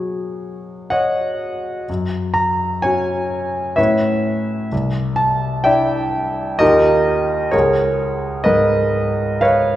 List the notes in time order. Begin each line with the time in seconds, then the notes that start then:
Already playing: B2 F#3 F#4 G#4 C#5
0.90 C#5 D#5 F#5
1.89 F#2
2.34 A#5
2.82 C#4 F#4 C#5 G#5
3.76 A2 C#4 E4 B4 C#5 E5
4.72 C2
5.16 A5
5.64 D4 E4 D5 E5 G5
6.59 D#2 D#4 F4 G4 A#4 D#5
7.51 C#2 G#4 A#4 C#5
8.44 G#2 A#4 B4 D#5
9.41 B4 C#5 F5